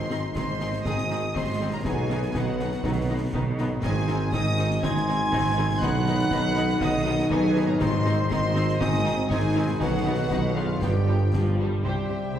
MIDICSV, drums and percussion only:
0, 0, Header, 1, 2, 480
1, 0, Start_track
1, 0, Tempo, 497512
1, 1784, Time_signature, 4, 2, 24, 8
1, 8976, Tempo, 505902
1, 11908, End_track
2, 0, Start_track
2, 0, Title_t, "Drums"
2, 101, Note_on_c, 9, 38, 57
2, 198, Note_off_c, 9, 38, 0
2, 343, Note_on_c, 9, 35, 73
2, 343, Note_on_c, 9, 38, 76
2, 439, Note_off_c, 9, 35, 0
2, 439, Note_off_c, 9, 38, 0
2, 582, Note_on_c, 9, 38, 58
2, 678, Note_off_c, 9, 38, 0
2, 701, Note_on_c, 9, 38, 56
2, 798, Note_off_c, 9, 38, 0
2, 824, Note_on_c, 9, 35, 82
2, 824, Note_on_c, 9, 38, 77
2, 920, Note_off_c, 9, 35, 0
2, 920, Note_off_c, 9, 38, 0
2, 945, Note_on_c, 9, 38, 58
2, 1041, Note_off_c, 9, 38, 0
2, 1069, Note_on_c, 9, 38, 51
2, 1166, Note_off_c, 9, 38, 0
2, 1309, Note_on_c, 9, 35, 76
2, 1309, Note_on_c, 9, 38, 67
2, 1405, Note_off_c, 9, 35, 0
2, 1405, Note_off_c, 9, 38, 0
2, 1783, Note_on_c, 9, 35, 90
2, 1783, Note_on_c, 9, 38, 78
2, 1880, Note_off_c, 9, 35, 0
2, 1880, Note_off_c, 9, 38, 0
2, 2027, Note_on_c, 9, 38, 56
2, 2123, Note_off_c, 9, 38, 0
2, 2147, Note_on_c, 9, 38, 51
2, 2244, Note_off_c, 9, 38, 0
2, 2264, Note_on_c, 9, 35, 74
2, 2264, Note_on_c, 9, 38, 77
2, 2360, Note_off_c, 9, 35, 0
2, 2360, Note_off_c, 9, 38, 0
2, 2504, Note_on_c, 9, 38, 57
2, 2601, Note_off_c, 9, 38, 0
2, 2622, Note_on_c, 9, 38, 54
2, 2719, Note_off_c, 9, 38, 0
2, 2737, Note_on_c, 9, 35, 86
2, 2737, Note_on_c, 9, 38, 67
2, 2833, Note_off_c, 9, 35, 0
2, 2833, Note_off_c, 9, 38, 0
2, 3216, Note_on_c, 9, 35, 83
2, 3312, Note_off_c, 9, 35, 0
2, 3454, Note_on_c, 9, 38, 57
2, 3551, Note_off_c, 9, 38, 0
2, 3697, Note_on_c, 9, 35, 91
2, 3697, Note_on_c, 9, 38, 86
2, 3697, Note_on_c, 9, 49, 36
2, 3794, Note_off_c, 9, 35, 0
2, 3794, Note_off_c, 9, 38, 0
2, 3794, Note_off_c, 9, 49, 0
2, 3933, Note_on_c, 9, 38, 59
2, 4030, Note_off_c, 9, 38, 0
2, 4173, Note_on_c, 9, 35, 73
2, 4173, Note_on_c, 9, 38, 73
2, 4270, Note_off_c, 9, 35, 0
2, 4270, Note_off_c, 9, 38, 0
2, 4415, Note_on_c, 9, 38, 58
2, 4511, Note_off_c, 9, 38, 0
2, 4541, Note_on_c, 9, 38, 60
2, 4637, Note_off_c, 9, 38, 0
2, 4662, Note_on_c, 9, 35, 84
2, 4662, Note_on_c, 9, 38, 83
2, 4759, Note_off_c, 9, 35, 0
2, 4759, Note_off_c, 9, 38, 0
2, 4791, Note_on_c, 9, 38, 65
2, 4888, Note_off_c, 9, 38, 0
2, 4904, Note_on_c, 9, 38, 56
2, 5000, Note_off_c, 9, 38, 0
2, 5140, Note_on_c, 9, 35, 87
2, 5140, Note_on_c, 9, 38, 73
2, 5236, Note_off_c, 9, 35, 0
2, 5236, Note_off_c, 9, 38, 0
2, 5614, Note_on_c, 9, 35, 94
2, 5614, Note_on_c, 9, 38, 80
2, 5710, Note_off_c, 9, 35, 0
2, 5710, Note_off_c, 9, 38, 0
2, 5851, Note_on_c, 9, 38, 58
2, 5948, Note_off_c, 9, 38, 0
2, 5972, Note_on_c, 9, 38, 56
2, 6069, Note_off_c, 9, 38, 0
2, 6087, Note_on_c, 9, 35, 80
2, 6087, Note_on_c, 9, 38, 73
2, 6183, Note_off_c, 9, 35, 0
2, 6183, Note_off_c, 9, 38, 0
2, 6330, Note_on_c, 9, 38, 58
2, 6427, Note_off_c, 9, 38, 0
2, 6455, Note_on_c, 9, 38, 62
2, 6551, Note_off_c, 9, 38, 0
2, 6567, Note_on_c, 9, 35, 91
2, 6567, Note_on_c, 9, 38, 74
2, 6663, Note_off_c, 9, 35, 0
2, 6663, Note_off_c, 9, 38, 0
2, 7048, Note_on_c, 9, 35, 85
2, 7144, Note_off_c, 9, 35, 0
2, 7294, Note_on_c, 9, 38, 62
2, 7390, Note_off_c, 9, 38, 0
2, 7534, Note_on_c, 9, 35, 93
2, 7534, Note_on_c, 9, 38, 86
2, 7534, Note_on_c, 9, 49, 39
2, 7630, Note_off_c, 9, 35, 0
2, 7630, Note_off_c, 9, 38, 0
2, 7630, Note_off_c, 9, 49, 0
2, 7778, Note_on_c, 9, 38, 62
2, 7874, Note_off_c, 9, 38, 0
2, 8018, Note_on_c, 9, 35, 81
2, 8018, Note_on_c, 9, 38, 78
2, 8115, Note_off_c, 9, 35, 0
2, 8115, Note_off_c, 9, 38, 0
2, 8259, Note_on_c, 9, 38, 63
2, 8355, Note_off_c, 9, 38, 0
2, 8380, Note_on_c, 9, 38, 59
2, 8477, Note_off_c, 9, 38, 0
2, 8498, Note_on_c, 9, 35, 96
2, 8498, Note_on_c, 9, 38, 89
2, 8595, Note_off_c, 9, 35, 0
2, 8595, Note_off_c, 9, 38, 0
2, 8621, Note_on_c, 9, 38, 66
2, 8718, Note_off_c, 9, 38, 0
2, 8738, Note_on_c, 9, 38, 58
2, 8835, Note_off_c, 9, 38, 0
2, 8978, Note_on_c, 9, 35, 84
2, 8978, Note_on_c, 9, 38, 70
2, 9073, Note_off_c, 9, 35, 0
2, 9073, Note_off_c, 9, 38, 0
2, 9452, Note_on_c, 9, 35, 95
2, 9452, Note_on_c, 9, 38, 72
2, 9547, Note_off_c, 9, 35, 0
2, 9547, Note_off_c, 9, 38, 0
2, 9926, Note_on_c, 9, 35, 82
2, 9926, Note_on_c, 9, 38, 76
2, 10021, Note_off_c, 9, 35, 0
2, 10021, Note_off_c, 9, 38, 0
2, 10413, Note_on_c, 9, 35, 84
2, 10413, Note_on_c, 9, 38, 80
2, 10508, Note_off_c, 9, 35, 0
2, 10508, Note_off_c, 9, 38, 0
2, 10903, Note_on_c, 9, 35, 89
2, 10903, Note_on_c, 9, 38, 79
2, 10998, Note_off_c, 9, 35, 0
2, 10998, Note_off_c, 9, 38, 0
2, 11908, End_track
0, 0, End_of_file